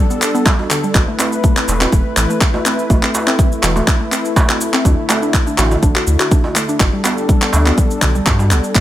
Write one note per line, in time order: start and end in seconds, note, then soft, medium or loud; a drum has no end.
0.00 0.93 G3 medium
0.00 0.93 D4 medium
0.00 0.93 A4 medium
0.10 0.21 B3 medium
0.10 cabasa soft
0.22 clap medium
0.22 cabasa medium
0.35 0.45 B3 loud
0.35 cabasa soft
0.46 0.58 G3 medium
0.46 kick loud
0.46 clap medium
0.46 djembe slap loud
0.46 cabasa medium
0.59 djembe tone medium
0.71 0.82 D3 medium
0.71 clap medium
0.71 cabasa medium
0.84 0.94 G3 medium
0.84 cabasa soft
0.94 1.04 A1 loud
0.94 6.76 A3 medium
0.94 6.76 E4 medium
0.94 4.81 B4 medium
0.94 kick loud
0.94 clap medium
0.94 djembe tone medium
0.94 cabasa medium
1.08 1.18 A3 medium
1.19 1.32 C4 medium
1.19 clap medium
1.19 djembe slap medium
1.19 cabasa medium
1.32 cabasa soft
1.44 1.56 A3 loud
1.44 kick loud
1.44 cabasa medium
1.56 1.67 C4 medium
1.56 clap medium
1.56 cabasa soft
1.68 1.86 E1 loud
1.68 djembe slap medium
1.68 djembe tone medium
1.68 cabasa medium
1.81 1.92 C4 loud
1.81 clap medium
1.81 djembe tone medium
1.81 cabasa soft
1.92 2.02 E1 medium
1.92 2.05 A3 medium
1.92 kick loud
1.92 cabasa medium
2.17 2.26 A1 loud
2.17 2.28 E3 medium
2.17 clap medium
2.17 cabasa medium
2.30 2.40 A3 medium
2.30 cabasa soft
2.41 kick loud
2.41 clap medium
2.41 cabasa medium
2.54 2.64 A3 medium
2.54 djembe tone medium
2.65 2.78 C4 medium
2.65 clap medium
2.65 cabasa medium
2.79 cabasa soft
2.90 2.99 A1 loud
2.90 3.02 A3 loud
2.90 kick loud
2.90 djembe tone medium
2.90 cabasa soft
3.03 3.13 C4 medium
3.03 clap medium
3.15 djembe slap medium
3.15 cabasa medium
3.27 3.38 C4 loud
3.27 clap medium
3.27 cabasa soft
3.39 3.51 A3 medium
3.39 kick loud
3.39 cabasa medium
3.52 cabasa soft
3.62 3.81 E1 loud
3.62 3.75 E3 medium
3.62 clap medium
3.62 djembe slap medium
3.62 djembe tone medium
3.62 cabasa medium
3.76 3.86 A3 medium
3.76 djembe tone medium
3.76 cabasa soft
3.88 kick loud
3.88 clap medium
3.88 cabasa medium
4.00 4.11 A3 medium
4.12 4.24 C4 medium
4.12 clap medium
4.12 cabasa medium
4.25 cabasa soft
4.36 4.49 A3 loud
4.36 kick loud
4.36 djembe slap loud
4.36 cabasa soft
4.49 4.60 C4 medium
4.49 clap medium
4.49 djembe tone medium
4.61 cabasa medium
4.74 4.84 C4 loud
4.74 clap medium
4.74 cabasa soft
4.85 4.95 D2 loud
4.85 6.78 D3 medium
4.85 4.97 D4 medium
4.85 kick loud
4.85 djembe tone medium
4.85 cabasa soft
5.09 5.21 A3 medium
5.09 clap medium
5.09 djembe slap medium
5.09 cabasa medium
5.22 5.33 D4 medium
5.22 cabasa soft
5.34 kick loud
5.34 clap medium
5.34 cabasa soft
5.47 5.57 D4 medium
5.47 cabasa soft
5.58 5.77 A1 loud
5.58 5.71 F#4 medium
5.58 clap medium
5.58 djembe slap medium
5.58 djembe tone medium
5.58 cabasa medium
5.71 djembe tone medium
5.71 cabasa soft
5.83 5.92 A1 medium
5.83 5.95 D4 loud
5.83 kick loud
5.83 cabasa medium
5.96 6.06 F#4 medium
5.96 clap medium
6.07 6.16 D2 medium
6.07 cabasa medium
6.20 6.31 F#4 loud
6.20 clap medium
6.20 cabasa soft
6.31 6.44 D4 medium
6.31 kick loud
6.31 cabasa soft
6.44 djembe tone medium
6.56 6.67 A3 medium
6.56 clap medium
6.56 cabasa medium
6.69 6.79 D4 medium
6.69 cabasa soft
6.80 6.90 G1 loud
6.80 8.73 G3 medium
6.80 8.73 D4 medium
6.80 8.73 A4 medium
6.80 kick loud
6.80 clap medium
6.80 djembe tone medium
6.80 cabasa medium
6.93 7.04 G3 medium
7.04 7.17 B3 medium
7.04 clap medium
7.04 djembe slap medium
7.04 cabasa medium
7.18 cabasa soft
7.29 7.41 G3 loud
7.29 kick loud
7.29 cabasa soft
7.42 7.52 B3 medium
7.42 clap medium
7.42 cabasa soft
7.52 7.72 D2 loud
7.52 djembe slap medium
7.52 djembe tone medium
7.52 cabasa medium
7.66 7.77 B3 loud
7.66 clap medium
7.66 djembe tone medium
7.66 cabasa soft
7.78 7.90 G3 medium
7.78 kick loud
7.78 cabasa medium
7.91 cabasa soft
8.02 8.20 B1 loud
8.02 8.14 D3 medium
8.02 kick medium
8.02 clap medium
8.02 djembe tone medium
8.02 cabasa medium
8.15 8.25 G3 medium
8.15 cabasa soft
8.26 8.52 G2 medium
8.26 kick loud
8.26 clap medium
8.26 djembe slap loud
8.26 cabasa medium
8.39 8.50 G3 medium
8.39 djembe tone medium
8.39 cabasa soft
8.51 8.60 B1 medium
8.51 8.63 B3 medium
8.51 clap medium
8.51 cabasa medium
8.64 cabasa soft
8.75 8.80 A1 loud
8.75 8.80 A3 medium
8.75 8.80 E4 medium
8.75 8.80 B4 medium
8.75 kick loud
8.75 clap loud
8.75 closed hi-hat medium
8.75 djembe tone medium
8.75 cabasa medium